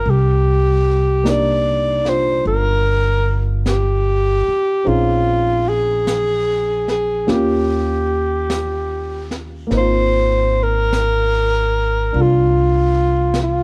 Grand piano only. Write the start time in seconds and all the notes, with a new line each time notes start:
1.24 A#3 D4 D#4 G4
2.04 D4 F4
4.84 C4 C#4 D#4 G#4
7.27 A#3 C#4 F4 G4
9.67 A#3 C4
9.74 D#4
9.78 F4
12.13 D4 F4